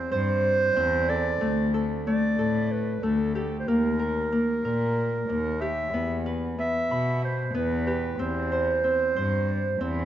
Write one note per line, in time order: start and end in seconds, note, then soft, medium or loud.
0.00 0.76 C4 medium
0.00 1.18 G4 medium
0.00 0.11 C5 medium
0.00 0.12 C5 medium
0.12 0.65 G2 medium
0.12 2.09 C5 medium
0.12 1.11 C5 loud
0.76 1.30 E2 medium
0.76 3.76 C4 medium
1.09 1.74 A4 medium
1.09 1.74 D5 medium
1.41 2.22 D2 medium
1.41 2.07 A3 medium
1.74 2.38 A4 medium
2.07 3.03 A3 medium
2.07 2.73 D5 medium
2.39 2.92 A2 medium
2.39 3.74 A4 medium
2.72 3.05 B4 medium
3.03 3.57 D2 medium
3.03 3.74 A3 medium
3.03 3.35 A4 medium
3.35 5.61 G4 medium
3.35 3.59 A4 medium
3.60 3.70 C5 medium
3.68 4.48 D#2 medium
3.68 4.32 A#3 medium
3.68 5.63 A#4 medium
3.99 4.64 A#4 medium
4.32 5.29 A#3 medium
4.64 5.18 A#2 medium
4.64 6.00 A#4 medium
5.29 5.83 D#2 medium
5.29 6.00 A#3 medium
5.61 7.87 G4 medium
5.61 6.26 E5 medium
5.93 6.74 E2 medium
5.93 6.58 B3 medium
6.26 8.25 B4 medium
6.58 7.54 B3 medium
6.58 7.20 E5 medium
6.91 7.44 B2 medium
6.91 8.25 B5 medium
7.24 7.54 C5 medium
7.54 8.09 E2 medium
7.54 8.25 B3 medium
7.54 7.86 B4 medium
7.87 10.05 G4 medium
7.87 8.22 B4 medium
8.19 9.00 E2 medium
8.19 8.84 C4 medium
8.19 10.05 C5 medium
8.52 9.16 C5 medium
8.84 9.80 C4 medium
9.16 9.70 G2 medium
9.16 10.05 C5 medium
9.80 10.05 E2 medium
9.80 10.05 C4 medium